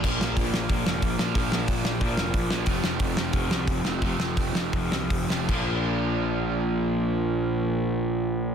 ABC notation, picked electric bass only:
X:1
M:4/4
L:1/8
Q:1/4=173
K:Bb
V:1 name="Picked electric bass" clef=bass
B,,, B,,, B,,, B,,, B,,, F,,, B,,, B,,, | B,,, B,,, B,,, B,,, B,,, F,,, B,,, B,,, | F,,, F,,, F,,, F,,, F,,, C,, F,,, F,,, | F,,, F,,, F,,, F,,, F,,, C,, F,,, F,,, |
B,,,8- | B,,,8 |]